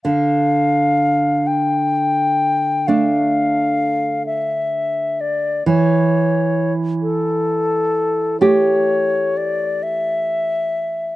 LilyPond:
<<
  \new Staff \with { instrumentName = "Flute" } { \time 12/8 \key d \minor \tempo 4. = 43 f''4. g''4. f''4. e''4 d''8 | cis''4 r8 a'4. cis''4 d''8 e''4. | }
  \new Staff \with { instrumentName = "Nylon-string guitar" } { \time 12/8 \key d \minor d2. <a d'>2. | e2. <a g'>2. | }
>>